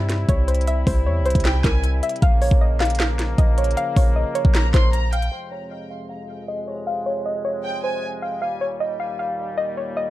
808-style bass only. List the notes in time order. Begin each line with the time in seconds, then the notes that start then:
Already playing: G2
0.29 C2
0.87 C2
1.06 E2
1.21 C2
1.35 C2
1.64 C2
2.22 A#1
2.51 A#1
3.38 A#1
3.96 A#1
4.45 A#1
4.74 A#1